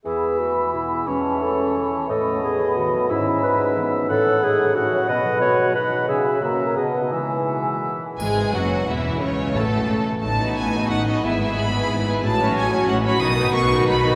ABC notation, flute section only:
X:1
M:3/4
L:1/8
Q:1/4=179
K:E
V:1 name="Flute section"
b6 | a6 | b6- | b6 |
f4 f2 | b4 b2 | g2 ^a2 =a2 | g4- g z |
z6 | z6 | z6 | z6 |
z6 | z6 |]